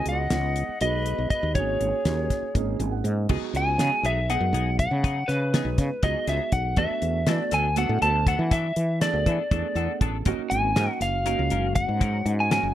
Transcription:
Already playing: grand piano G#3 B3 D#4 F#4
0.06 fretless electric bass C#2, lead electric guitar F#5, closed hi-hat
0.10 flute D#5
0.30 fretless electric bass C#2, grand piano G#3 B3 D#4 G#4, snare, closed hi-hat
0.56 closed hi-hat
0.69 muted fretless electric bass stroke
0.81 fretless electric bass B1, grand piano G#3 B3 D#4 F#4, flute B4, lead electric guitar D#5, closed hi-hat
1.06 closed hi-hat
1.18 fretless electric bass B1
1.30 flute B4, lead electric guitar D#5, muted fretless electric bass stroke, kick, closed hi-hat
1.43 fretless electric bass D#2
1.55 fretless electric bass G#1, grand piano A#3 C#4 D#4 F#4, flute G#4, lead electric guitar C#5, kick, closed hi-hat
1.81 fretless electric bass G#1, closed hi-hat
2.04 fretless electric bass D#2, grand piano A#3 C#4 D#4 F#4, snare, closed hi-hat
2.30 kick, snare, closed hi-hat
2.42 muted fretless electric bass stroke
2.54 fretless electric bass G#1, grand piano A#3 C#4 D#4 G#4, kick, closed hi-hat
2.79 fretless electric bass G#1, grand piano G#5, closed hi-hat
2.92 grand piano F#5
3.04 fretless electric bass G#2, grand piano D#5, closed hi-hat
3.29 fretless electric bass C#2, clean electric guitar F#3 B3 D#4 G#4, grand piano G#3 B3 D#4 F#4, kick, crash
3.42 muted fretless electric bass stroke
3.54 fretless electric bass C#2, lead electric guitar G#5, closed hi-hat
3.78 fretless electric bass C#3, clean electric guitar F#3 B3 D#4 G#4, grand piano G#3 B3 D#4 F#4, snare, closed hi-hat
4.03 fretless electric bass B1, clean electric guitar B3 D#4 G#4, lead electric guitar E5, closed hi-hat
4.28 clean electric guitar F#3 B3 D#4 G#4, grand piano G#3 B3 D#4 G#4, lead electric guitar F#5, closed hi-hat
4.41 fretless electric bass F#2
4.53 fretless electric bass B1, clean electric guitar B3 D#4 G#4, closed hi-hat
4.79 lead electric guitar F#5, kick, closed hi-hat
4.91 fretless electric bass C#3
5.04 clean electric guitar F#3 B3 D#4 G#4, kick, closed hi-hat
5.28 fretless electric bass C#3, lead electric guitar B4, snare, closed hi-hat
5.52 clean electric guitar F#3 B3 D#4 G#4, grand piano G#3 B3 D#4 G#4, snare, closed hi-hat
5.65 fretless electric bass B1
5.78 fretless electric bass C#3, kick, snare, closed hi-hat
6.03 fretless electric bass C#2, clean electric guitar F#3 B3 D#4 G#4, grand piano G#3 B3 D#4 F#4, lead electric guitar D#5, kick, closed hi-hat
6.27 fretless electric bass C#2, clean electric guitar B3 D#4 G#4, lead electric guitar E5, snare, closed hi-hat
6.52 fretless electric bass B1, lead electric guitar F#5, kick, closed hi-hat
6.76 fretless electric bass E2, clean electric guitar F#3 B3 D4 A4, grand piano A3 B3 D4 F#4, lead electric guitar E5, kick, closed hi-hat
6.91 muted fretless electric bass stroke
7.02 fretless electric bass E2, closed hi-hat
7.27 fretless electric bass E3, clean electric guitar F#3 B3 D4 A4, grand piano A3 B3 D4 F#4, snare, closed hi-hat
7.35 lead electric guitar D5
7.51 fretless electric bass D2, clean electric guitar B3 D4 A4, lead electric guitar G#5, snare, closed hi-hat
7.76 clean electric guitar F#3 B3 D4 A4, grand piano A3 B3 D4 F#4, lead electric guitar F#5, closed hi-hat
7.89 fretless electric bass A2
8.02 fretless electric bass D2, clean electric guitar B3 D4 A4, lead electric guitar A5, closed hi-hat
8.27 clean electric guitar F#3 B3 D4 A4, lead electric guitar F#5, kick, closed hi-hat
8.39 fretless electric bass E3
8.51 clean electric guitar F#3 B3 D4 A4, lead electric guitar E5, kick, closed hi-hat
8.76 fretless electric bass E3, closed hi-hat
9.01 clean electric guitar F#3 B3 D4 A4, grand piano A3 B3 D4 G#4, lead electric guitar D5, snare, closed hi-hat
9.14 fretless electric bass D2
9.26 fretless electric bass E3, clean electric guitar B3 D4 A4, kick, closed hi-hat
9.51 fretless electric bass E2, clean electric guitar F#3 B3 D4 A4, grand piano A3 B3 D4 G#4, kick, closed hi-hat
9.75 fretless electric bass E2, clean electric guitar B3 D4 A4, grand piano F#5, closed hi-hat
10.01 fretless electric bass A1, clean electric guitar F#3 B3 D4 A4, grand piano A5, kick, closed hi-hat
10.25 fretless electric bass G#1, clean electric guitar F#3 C#4 D#4 A#4, ambient pad G#3 C#4 F#4, grand piano A#3 C#4 D#4 F#4, kick, closed hi-hat
10.39 muted fretless electric bass stroke
10.50 fretless electric bass G#1, lead electric guitar G#5, closed hi-hat
10.75 fretless electric bass G#2, clean electric guitar F#3 C#4 D#4 A#4, grand piano A#3 C#4 D#4 F#4, snare, closed hi-hat
11.01 fretless electric bass F#1, lead electric guitar F5, snare, closed hi-hat
11.25 clean electric guitar F#3 C#4 D#4 A#4, grand piano A#3 C#4 D#4 F#4, closed hi-hat
11.39 fretless electric bass C#2
11.50 fretless electric bass F#1, clean electric guitar C#4 D#4 A#4, closed hi-hat
11.75 lead electric guitar F#5, kick, closed hi-hat
11.89 fretless electric bass G#2
12.01 clean electric guitar F#3 C#4 D#4 A#4, kick, closed hi-hat
12.26 fretless electric bass G#2, closed hi-hat
12.40 lead electric guitar G#5
12.51 clean electric guitar F#3 C#4 D#4 A#4, grand piano A#3 C#4 D#4 F#4, lead electric guitar G#5, snare, closed hi-hat
12.63 fretless electric bass F#1

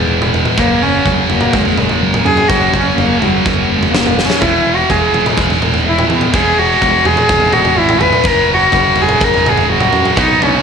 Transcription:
Already playing: distorted electric guitar E2 B2 E3, clean electric guitar G#3 B3 E4
0.09 picked electric bass E1, clean electric guitar E3
0.22 mid tom
0.34 clean electric guitar B3, floor tom
0.45 mid tom
0.57 picked electric bass F#1, distorted electric guitar F#2 C#3 F#3, clean electric guitar F#2, cello A#3, kick, floor tom
0.82 picked electric bass F#1, cello C#4
1.05 picked electric bass F#1, cello F#3, clean electric guitar C#4, kick, floor tom
1.30 picked electric bass F#1, cello A#3, clean electric guitar F#4, floor tom
1.41 mid tom
1.53 picked electric bass F#1, cello G#3, clean electric guitar A#3, kick, floor tom
1.65 floor tom
1.77 picked electric bass F#1, clean electric guitar C#4, mid tom
1.89 floor tom
2.01 picked electric bass F#1, clean electric guitar F#3
2.14 mid tom
2.24 picked electric bass F#2, clean electric guitar C#4, cello G#4, floor tom
2.37 mid tom
2.48 picked electric bass F#1, distorted electric guitar F#2 C#3, clean electric guitar F#2, cello F#4, kick, floor tom
2.53 distorted electric guitar F#3
2.73 picked electric bass F#1, kick
2.79 cello C#4
2.94 picked electric bass F#1, cello A#3, clean electric guitar C#4, floor tom
3.21 picked electric bass F#1, clean electric guitar F#4, floor tom
3.27 cello F#3
3.45 picked electric bass F#1, clean electric guitar A#3, kick, floor tom
3.68 picked electric bass F#1, clean electric guitar C#4
3.76 cello G#3
3.83 floor tom
3.91 picked electric bass F#1, clean electric guitar F#3, cello A#3, snare
4.06 floor tom, mid tom
4.18 clean electric guitar C#4, snare
4.25 cello C#4
4.30 snare
4.40 picked electric bass E1, distorted electric guitar E2 B2 E3, cello E4, kick, floor tom
4.65 picked electric bass E1
4.75 cello F#4
4.90 picked electric bass E1, cello G#4, kick, floor tom
5.13 picked electric bass E1, floor tom
5.26 mid tom
5.37 picked electric bass E1, kick, floor tom
5.50 floor tom
5.61 picked electric bass E1, mid tom
5.74 floor tom
5.84 picked electric bass E1, cello E4
5.99 mid tom
6.09 picked electric bass E2, cello B3, floor tom
6.21 mid tom
6.33 picked electric bass E1, distorted electric guitar E2 B2, cello G#4, kick, floor tom
6.38 distorted electric guitar E3
6.57 picked electric bass E1, cello F#4
6.82 picked electric bass E1, kick, floor tom
7.04 picked electric bass E1, cello G#4, floor tom
7.17 mid tom
7.29 picked electric bass E1, kick, floor tom
7.40 floor tom
7.52 picked electric bass E1, cello F#4, mid tom
7.65 floor tom
7.77 picked electric bass G#1, cello E4
7.89 mid tom
8.01 cello B4, floor tom
8.12 mid tom
8.24 picked electric bass F#1, distorted electric guitar F#2 C#3, cello A#4, kick, floor tom
8.28 distorted electric guitar F#3
8.49 picked electric bass F#1
8.54 cello F#4
8.72 picked electric bass F#1, kick, floor tom
8.96 picked electric bass F#1, floor tom
9.02 cello G#4
9.09 mid tom
9.21 picked electric bass F#1, cello A#4, kick, floor tom
9.34 floor tom
9.44 picked electric bass F#1, mid tom
9.49 cello G#4
9.57 floor tom
9.68 picked electric bass F#1, cello F#4
9.80 mid tom
9.92 picked electric bass F#2, floor tom
10.05 mid tom
10.15 picked electric bass B1, distorted electric guitar B2 F#3, kick, high tom
10.19 distorted electric guitar B3, cello D#4
10.39 picked electric bass B1, high tom
10.44 cello C#4

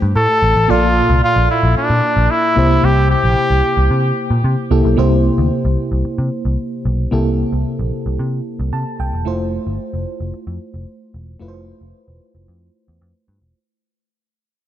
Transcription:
Already playing: fm electric piano A2 A3 E4 G4 C5
0.02 picked electric bass G2
0.16 picked electric bass A2, flugelhorn A4
0.42 picked electric bass A1
0.56 picked electric bass A1
0.68 picked electric bass A#1, fm electric piano A#2 A#3 F4 A4 D5, flugelhorn F4
1.09 picked electric bass C2
1.24 flugelhorn F4
1.36 picked electric bass A#1
1.51 flugelhorn E4
1.63 picked electric bass A#1
1.76 flugelhorn D4, muted picked electric bass stroke
1.90 picked electric bass A#2
2.17 picked electric bass A#1
2.31 flugelhorn E4
2.56 picked electric bass C2, fm electric piano C3 A#3 E4 G4 C5
2.84 picked electric bass C2, flugelhorn G4
3.11 flugelhorn G4
3.24 picked electric bass A#1
3.50 picked electric bass C2
3.77 picked electric bass C2
3.91 picked electric bass C3
4.31 picked electric bass A#2
4.44 picked electric bass C3
4.71 picked electric bass C2, fm electric piano A#3 E4 G4 A4
4.84 picked electric bass B1
4.97 picked electric bass C2, fm electric piano C3 A#3 E4 G4 C5
5.38 picked electric bass D2
5.65 picked electric bass C2
5.92 picked electric bass C2
6.05 muted picked electric bass stroke
6.18 picked electric bass C3
6.45 picked electric bass C2
6.85 picked electric bass B1
7.11 picked electric bass C2, fm electric piano C3 A#3 E4 G4 A4
7.52 picked electric bass C2
7.79 picked electric bass A#1
8.06 picked electric bass C2
8.19 picked electric bass C3
8.59 picked electric bass C2
8.73 picked electric bass C3, fm electric piano A5
9.00 picked electric bass C2, fm electric piano G5
9.13 picked electric bass E1
9.25 picked electric bass F1, fm electric piano A3 E4 F4 C5
9.67 picked electric bass G1
9.93 picked electric bass F1
10.20 picked electric bass F1
10.34 muted picked electric bass stroke
10.47 picked electric bass F2
10.74 picked electric bass F1
11.14 picked electric bass E1
11.39 picked electric bass F1, fm electric piano A3 E4 F4 B4
11.48 fm electric piano C5
11.81 picked electric bass F1
12.08 picked electric bass E1
12.35 picked electric bass F1
12.48 picked electric bass F2
12.88 picked electric bass E2
13.01 picked electric bass F2
13.28 picked electric bass G2
13.42 picked electric bass E1

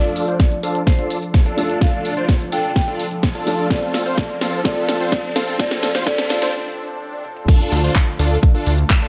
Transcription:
Already playing: felt piano F3 A3 D4 A4, analog synth pad F3 D4 A4, supersaw synth D4 F4 A4, vibraphone D5, riser
0.04 closed hi-hat
0.16 open hi-hat, shaker
0.28 supersaw synth D4 F4 C5, closed hi-hat, shaker
0.40 kick, snare, closed hi-hat, shaker
0.52 closed hi-hat
0.63 supersaw synth D4 F4 A4, vibraphone C5, open hi-hat, shaker
0.75 closed hi-hat, shaker
0.87 vibraphone C5, kick, snare, closed hi-hat, shaker
0.99 supersaw synth D4 F4 A4, vibraphone C5, closed hi-hat
1.10 open hi-hat, shaker
1.22 closed hi-hat, shaker
1.34 kick, snare, closed hi-hat, shaker
1.46 supersaw synth D4 F4 A4, closed hi-hat
1.57 felt piano F3 A3 D4 A4, open hi-hat, shaker
1.70 closed hi-hat, shaker
1.80 felt piano F3 A3 D4 A4, vibraphone F5, kick, snare, closed hi-hat, shaker
1.93 closed hi-hat
2.05 open hi-hat, shaker
2.17 supersaw synth D4 F4 C5, closed hi-hat, shaker
2.29 kick, snare, closed hi-hat, shaker
2.40 closed hi-hat
2.52 supersaw synth D4 F4 A4, vibraphone G5, open hi-hat, shaker
2.64 closed hi-hat, shaker
2.76 kick, snare, closed hi-hat, shaker
2.88 supersaw synth D4 F4 A4, closed hi-hat
3.00 open hi-hat, shaker
3.11 closed hi-hat, shaker
3.23 kick, snare, closed hi-hat, shaker
3.35 supersaw synth D4 F4 A4, closed hi-hat
3.46 felt piano F3 A3 D4 A4, open hi-hat, shaker
3.59 closed hi-hat, shaker
3.69 felt piano F3 A3 C4 A4, supersaw synth C4 F4, analog synth pad C4, vibraphone D5, kick, snare, closed hi-hat, shaker
3.82 closed hi-hat
3.94 snare, open hi-hat, shaker
4.06 supersaw synth C4 F4 C5, closed hi-hat, shaker
4.18 kick, snare, closed hi-hat, shaker
4.30 closed hi-hat
4.41 supersaw synth C4 F4 A4, vibraphone C5, snare, open hi-hat, shaker
4.53 closed hi-hat, shaker
4.64 felt piano F3 A3 C4 A4, supersaw synth C4 F4, vibraphone D5, kick, snare, closed hi-hat, shaker
4.77 closed hi-hat
4.89 snare, open hi-hat, shaker
5.00 supersaw synth C4 F4 C5, closed hi-hat, shaker
5.12 kick, snare, closed hi-hat, shaker
5.24 closed hi-hat
5.36 supersaw synth C4 F4 A4, vibraphone C5, snare, open hi-hat, shaker
5.48 closed hi-hat, shaker
5.58 felt piano F3 A3 C4 A4, supersaw synth C4 F4 A4, vibraphone D5, kick, snare, closed hi-hat, shaker
5.71 snare, closed hi-hat
5.83 snare, open hi-hat, shaker
5.95 supersaw synth C4 F4 C5, snare, closed hi-hat, shaker
6.05 felt piano F3 A3 C4 A4, supersaw synth C4 F4 A4, vibraphone D5, kick, snare, closed hi-hat, shaker
6.18 snare, closed hi-hat
6.30 snare, open hi-hat, shaker
6.42 supersaw synth C4 F4 C5, snare, closed hi-hat, shaker
6.54 swell
7.13 high tom
7.25 mid tom
7.37 mid tom
7.48 analog synth pad D3 A3 F4, supersaw synth D4 F4 A4, kick, closed hi-hat, crash, shaker
7.72 analog synth bass D2, open hi-hat, shaker
7.84 supersaw synth D4 F4 C5, closed hi-hat, shaker
7.95 kick, clap, closed hi-hat, shaker
8.19 analog synth bass D2, supersaw synth D4 F4 A4, open hi-hat, shaker
8.31 closed hi-hat, shaker
8.43 kick, closed hi-hat, shaker
8.55 supersaw synth D4 F4 A4, closed hi-hat
8.67 analog synth bass D2, open hi-hat, shaker
8.78 closed hi-hat, shaker
8.90 kick, clap, closed hi-hat, shaker
9.02 supersaw synth D4 F4 A4, closed hi-hat

